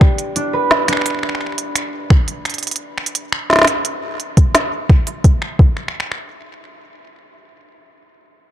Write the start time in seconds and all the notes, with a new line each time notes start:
Already playing: D4 G4 B4 D5
0.01 finger snap, kick
0.18 closed hi-hat
0.36 D4, closed hi-hat
0.53 B4
0.71 snare
0.88 D4, finger snap, closed hi-hat
0.93 finger snap
0.97 finger snap
1.01 finger snap
1.06 finger snap, closed hi-hat
1.10 finger snap
1.14 finger snap
1.19 finger snap
1.23 finger snap
1.29 finger snap
1.35 finger snap
1.41 finger snap
1.46 finger snap
1.52 finger snap
1.58 closed hi-hat
1.75 finger snap, closed hi-hat
2.10 finger snap, kick
2.28 closed hi-hat
2.45 finger snap, closed hi-hat
2.50 closed hi-hat
2.54 closed hi-hat
2.58 closed hi-hat
2.63 closed hi-hat
2.67 closed hi-hat
2.71 closed hi-hat
2.76 closed hi-hat
2.98 finger snap
3.06 closed hi-hat
3.15 closed hi-hat
3.32 finger snap
3.50 snare
3.53 snare
3.56 snare
3.59 snare
3.62 snare
3.64 finger snap, snare, closed hi-hat
3.85 closed hi-hat
4.20 closed hi-hat
4.37 kick, closed hi-hat
4.55 finger snap, snare, closed hi-hat
4.89 finger snap, kick
5.07 closed hi-hat
5.24 kick, closed hi-hat
5.42 finger snap
5.59 kick
5.77 finger snap
5.88 finger snap
6.00 finger snap
6.12 finger snap